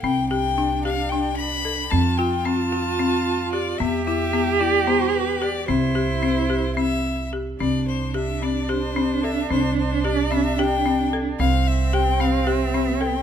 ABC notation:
X:1
M:7/8
L:1/8
Q:1/4=111
K:C
V:1 name="Violin"
g g2 f g b2 | a g a4 d | e e2 d c B d | c4 e2 z |
d c e d c2 e | c c d e g2 z | f e g f e2 g |]
V:2 name="Cello"
D6- D | F6- F | G6- G | E6 z |
D6- D- | D6- D | C6- C |]
V:3 name="Marimba"
C G D G D2 A | C F C F C2 G | B, E B, E B,2 G | C G C G C2 G |
C2 G C G C A | C2 G C G C A | C2 G C G C A |]
V:4 name="Upright bass" clef=bass
C,,6- C,, | F,,6- F,, | E,,6- E,, | C,,6- C,, |
C,,6- C,, | C,,6- C,, | C,,6- C,, |]